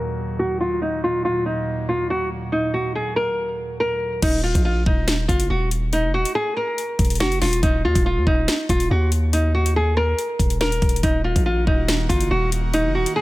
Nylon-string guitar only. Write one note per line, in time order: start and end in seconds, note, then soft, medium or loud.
0.00 0.36 A#4 medium
0.39 0.58 F#4 medium
0.60 0.79 F4 medium
0.82 1.00 D#4 medium
1.04 1.22 F4 medium
1.25 1.43 F4 medium
1.46 1.86 D#4 medium
1.89 2.07 F4 medium
2.10 2.28 F#4 medium
2.52 2.71 D#4 medium
2.74 2.92 F#4 medium
2.95 3.13 G#4 medium
3.16 3.76 A#4 medium
3.80 4.20 A#4 medium
4.22 4.41 D#4 medium
4.43 4.62 F4 medium
4.65 4.83 F4 medium
4.86 5.26 D#4 medium
5.28 5.47 F4 medium
5.50 5.68 F#4 medium
5.93 6.11 D#4 medium
6.14 6.32 F#4 medium
6.35 6.53 G#4 medium
6.57 7.17 A#4 medium
7.20 7.39 F#4 medium
7.41 7.60 F4 medium
7.63 7.81 D#4 medium
7.85 8.03 F4 medium
8.06 8.24 F4 medium
8.27 8.67 D#4 medium
8.70 8.88 F4 medium
8.91 9.09 F#4 medium
9.33 9.51 D#4 medium
9.55 9.73 F#4 medium
9.76 9.94 G#4 medium
9.97 10.57 A#4 medium
10.61 11.01 A#4 medium
11.03 11.22 D#4 medium
11.24 11.43 F4 medium
11.46 11.64 F4 medium
11.67 12.07 D#4 medium
12.09 12.28 F4 medium
12.31 12.49 F#4 medium
12.74 12.92 D#4 medium
12.95 13.13 F#4 medium
13.16 13.21 G#4 medium